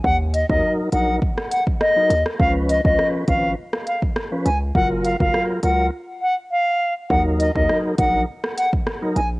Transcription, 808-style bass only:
\new Staff \with { instrumentName = "808-style bass" } { \clef bass \time 4/4 \key ees \minor \tempo 4 = 102 ees,8. ees,16 r8 bes,,8 r4. ees,16 r16 | des,8. des,16 r8 aes,,8 r4. des,8 | ges,,8. ges,,16 r8 des,8 r2 | ees,8. ees,16 r8 bes,,8 r4. bes,,8 | }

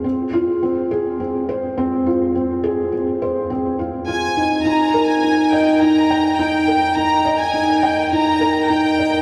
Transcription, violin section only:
\new Staff \with { instrumentName = "Violin section" } { \time 4/4 \key f \dorian \tempo 4 = 104 r1 | r2. aes''4 | bes''8. aes''8. g''8 bes''4 g''4 | bes''8. aes''8. g''8 bes''4 g''4 | }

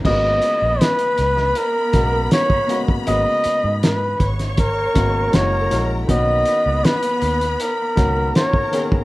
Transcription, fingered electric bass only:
\new Staff \with { instrumentName = "Fingered electric bass" } { \clef bass \time 4/4 \key gis \minor \tempo 4 = 80 gis,,8 r16 ais,,16 r8 cis,8 r8 b,,8 r4 | gis,,16 r8 gis,8. gis,,4 gis,,8 fis,,8 ais,,8 | b,,8 r16 cis,16 r8 dis,8 r8 cis,8 r4 | }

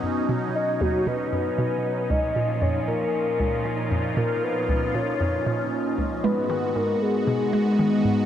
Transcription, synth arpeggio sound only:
\new Staff \with { instrumentName = "Synth arpeggio sound" } { \clef bass \time 4/4 \key bes \phrygian \tempo 4 = 116 fis,8 b,8 r8 dis,16 r16 b,16 r16 fis,8 b,8 r8 | des,16 r16 bes,16 r16 f,8 bes,8 r8 des,16 r16 bes,16 r16 f,8 | bes,8 r8 des,16 r16 bes,16 r16 f,8 bes,8 r8 des,16 r16 | aes16 r16 ees8 aes,8 r8 ces16 r16 aes16 r16 ees8 aes,8 | }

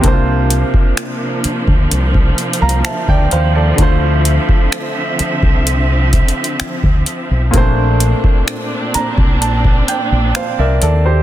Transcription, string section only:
\new Staff \with { instrumentName = "String section" } { \time 4/4 \key d \minor \tempo 4 = 64 << { <c bes d'>1 | <d c' e''>1 | <bes, c'>1 | } \\ { f1~ | f1 | d'1 | } >> }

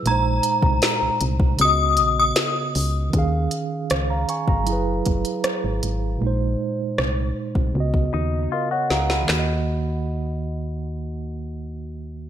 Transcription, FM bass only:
\new Staff \with { instrumentName = "FM bass" } { \clef bass \time 4/4 \key ees \minor \tempo 4 = 78 bes,,8 r16 c,16 r16 c,16 c,8 des,8 bes,,8 r8 des,8 | ees,8 r8 des,8 r16 aes,,16 ges,,8 ges,,16 r8 aes,,16 aes,,8 | bes,,8 r8 c,8 r16 c,16 des,8 ees,8 r8 des,8 | ees,1 | }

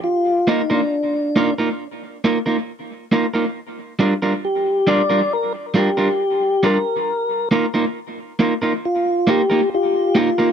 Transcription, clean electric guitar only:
\new Staff \with { instrumentName = "Clean electric guitar" } { \time 4/4 \key f \mixolydian \tempo 4 = 68 r8 <bes ees' f' bes'>16 <bes ees' f' bes'>16 r8 <bes ees' f' bes'>16 <bes ees' f' bes'>16 r8 <bes ees' f' bes'>16 <bes ees' f' bes'>16 r8 <bes ees' f' bes'>16 <bes ees' f' bes'>16 | r8 <g d' f' bes'>16 <g d' f' bes'>16 r8 <g d' f' bes'>16 <g d' f' bes'>16 r8 <g d' f' bes'>16 <g d' f' bes'>16 r8 <g d' f' bes'>16 r16 | r8 <bes ees' f' bes'>16 <bes ees' f' bes'>16 r8 <bes ees' f' bes'>16 <bes ees' f' bes'>16 r8 <bes ees' f' bes'>16 <bes ees' f' bes'>16 r8 <bes ees' f' bes'>16 <bes ees' f' bes'>16 | }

